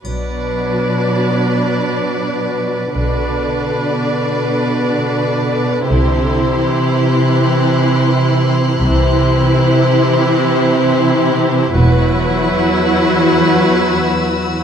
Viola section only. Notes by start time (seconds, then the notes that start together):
0.04 F#3 D4
2.97 D3 D4
5.90 E4
6.63 E3
8.81 E3 E4
11.75 F#3 E4